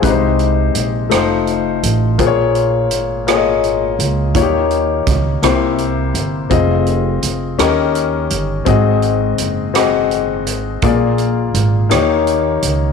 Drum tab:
HH |xxxxxx|xxxxxx|xxxxxx|xxxxxx|
SD |---r--|---r--|--rr--|---r--|
BD |o-----|o-----|o-o---|o-----|

HH |xxxxxx|xxxxxx|
SD |---r--|---r--|
BD |o-----|o-----|